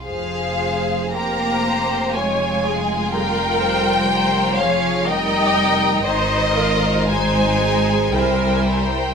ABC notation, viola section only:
X:1
M:3/4
L:1/8
Q:1/4=60
K:Fm
V:1 name="Viola section"
A2 B c d A | B2 c d e2 | c B c A B c |]